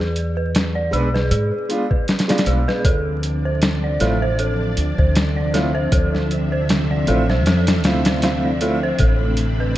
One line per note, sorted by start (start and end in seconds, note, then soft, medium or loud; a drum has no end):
0.00 0.89 E2 medium
0.00 0.93 G#4 loud
0.00 0.37 B4 loud
0.00 0.75 D5 medium
0.00 snare soft
0.16 closed hi-hat medium
0.37 0.53 B4 medium
0.55 snare loud
0.55 closed hi-hat medium
0.75 0.91 D5 medium
0.91 1.30 B1 medium
0.91 1.07 G#3 loud
0.91 1.08 B3 medium
0.91 1.08 D4 medium
0.91 1.13 G#4 loud
0.91 1.08 B4 loud
0.91 closed hi-hat medium
1.14 1.30 B4 loud
1.14 snare medium
1.31 1.50 G#2 medium
1.31 1.51 G#4 medium
1.31 closed hi-hat medium
1.69 1.85 G#3 medium
1.69 1.85 B3 medium
1.69 1.85 D4 medium
1.69 1.86 F4 loud
1.69 closed hi-hat medium
1.91 2.07 B4 medium
1.91 kick medium
2.08 snare medium
2.08 closed hi-hat medium
2.19 snare medium
2.19 closed hi-hat medium
2.28 2.82 G#3 medium
2.28 2.82 B3 medium
2.28 2.83 D4 medium
2.28 2.83 F4 medium
2.28 2.46 D5 medium
2.28 snare medium
2.28 closed hi-hat medium
2.38 snare medium
2.38 closed hi-hat medium
2.46 2.65 B1 medium
2.46 2.67 G#4 loud
2.46 closed hi-hat medium
2.68 2.84 B4 loud
2.68 snare medium
2.85 3.97 D2 medium
2.85 8.96 F3 medium
2.85 9.78 C4 medium
2.85 9.78 D4 medium
2.85 3.05 A4 loud
2.85 5.90 D5 medium
2.85 kick loud
2.85 closed hi-hat loud
3.23 closed hi-hat medium
3.45 3.61 C5 medium
3.62 snare loud
3.62 closed hi-hat medium
3.84 4.00 D5 medium
4.00 4.74 A1 medium
4.00 4.24 A3 medium
4.00 4.24 C4 medium
4.00 4.24 E4 medium
4.00 4.25 F4 medium
4.00 4.21 A4 loud
4.00 snare soft
4.00 closed hi-hat medium
4.22 4.38 C5 loud
4.39 4.59 A4 medium
4.39 closed hi-hat medium
4.77 4.96 D2 medium
4.77 closed hi-hat medium
4.98 5.89 D2 medium
4.98 5.15 C5 medium
4.98 kick medium
5.15 snare loud
5.15 closed hi-hat medium
5.36 5.53 D5 medium
5.53 5.69 A3 medium
5.53 5.69 C4 medium
5.53 5.70 E4 medium
5.53 5.70 F4 medium
5.53 5.74 A4 medium
5.53 snare medium
5.53 closed hi-hat medium
5.75 5.91 C5 loud
5.92 7.04 D2 medium
5.92 6.13 A4 loud
5.92 8.97 E5 medium
5.92 kick loud
5.92 closed hi-hat medium
6.15 snare soft
6.31 closed hi-hat medium
6.52 6.68 C5 medium
6.69 snare loud
6.69 closed hi-hat medium
6.91 7.07 D5 medium
7.06 7.46 A1 medium
7.06 7.23 A3 loud
7.06 7.23 C4 medium
7.06 7.23 E4 medium
7.06 7.24 F4 loud
7.06 7.28 A4 loud
7.06 closed hi-hat medium
7.30 7.46 C5 loud
7.30 snare medium
7.46 7.84 F2 medium
7.46 7.67 A4 medium
7.46 snare medium
7.46 closed hi-hat medium
7.67 snare loud
7.67 closed hi-hat medium
7.84 8.97 D2 medium
7.84 8.19 A3 medium
7.84 8.19 C4 medium
7.84 8.19 E4 medium
7.84 8.19 F4 medium
7.84 snare loud
7.84 closed hi-hat medium
8.05 8.22 C5 medium
8.05 snare loud
8.05 closed hi-hat medium
8.22 8.47 A3 medium
8.22 8.47 C4 medium
8.22 8.47 E4 medium
8.22 8.48 F4 loud
8.22 snare loud
8.22 closed hi-hat medium
8.45 8.61 D5 medium
8.61 8.77 A3 loud
8.61 8.77 C4 medium
8.61 8.77 E4 medium
8.61 8.78 F4 loud
8.61 8.82 A4 loud
8.61 closed hi-hat medium
8.83 8.99 C5 loud
8.99 9.78 A1 medium
8.99 9.78 A3 medium
8.99 9.20 A4 loud
8.99 9.78 B5 medium
8.99 kick loud
8.99 closed hi-hat medium
9.37 closed hi-hat medium
9.60 9.76 B4 medium